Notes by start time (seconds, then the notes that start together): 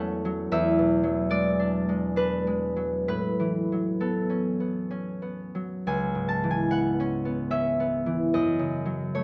Already playing: E2 E3 F#3 A3 C#4 F#5 A5
0.25 F#3
0.52 E2 E5
0.79 B2
1.03 F#3
1.30 G#3 D5
1.59 D4
1.89 G#3
2.16 D4 B4
2.47 G#3
2.76 F#3
3.08 A2 B4
3.40 E3
3.72 F#3
4.00 B3 A4
4.30 C#4
4.60 B3
4.91 C#4
5.22 B3
5.55 F#3
5.87 C#2 G#5
6.15 G#2
6.28 A5
6.43 E3
6.51 G#5
6.71 B3 F#5
7.00 C#4
7.25 B3
7.51 C#4 E5
7.80 B3
8.06 E3
8.34 F#2 D#5
8.59 C#3
8.85 F#3
9.15 A3 C#5